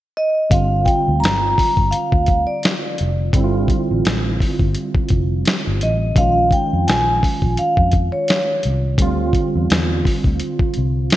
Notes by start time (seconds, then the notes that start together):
0.17 D#5
0.49 G1 D3 G3 C4 F5, kick, closed hi-hat
0.54 F4
0.85 G5, kick, closed hi-hat
1.08 D2
1.20 G1 A#5, closed hi-hat
1.25 snare
1.58 kick, open hi-hat
1.77 G1, kick
1.91 F5, muted fingered electric bass stroke, closed hi-hat
2.12 D2, kick
2.26 kick, closed hi-hat
2.47 D5
2.63 snare, closed hi-hat
2.98 F1, closed hi-hat
3.33 G1 D3 G3 C4, kick, closed hi-hat
3.38 E4
3.44 F4
3.68 kick, closed hi-hat
3.91 A1
4.05 A1, snare, closed hi-hat
4.40 kick, open hi-hat
4.59 G1, kick
4.75 closed hi-hat
4.95 muted fingered electric bass stroke, kick
5.09 F1, kick, closed hi-hat
5.45 snare, closed hi-hat
5.67 G1
5.81 A1 D#5, closed hi-hat
6.15 A#1 D#3 G#3 C#4 F5, kick, closed hi-hat
6.20 F4
6.51 G5, kick, closed hi-hat
6.73 F2
6.88 A#1 G#5, snare, closed hi-hat
7.23 kick, open hi-hat
7.42 A#1, kick
7.57 F5, closed hi-hat
7.77 F2, kick
7.92 kick, closed hi-hat
8.12 C#5
8.28 snare, closed hi-hat
8.63 C2, closed hi-hat
8.97 D2 D3 G3 C4, kick, closed hi-hat
9.02 F4
9.33 kick, closed hi-hat
9.55 E2
9.70 E2, snare, closed hi-hat
10.05 kick, open hi-hat
10.24 D2, kick
10.40 closed hi-hat
10.59 muted fingered electric bass stroke, kick
10.74 C2, closed hi-hat
11.10 snare, closed hi-hat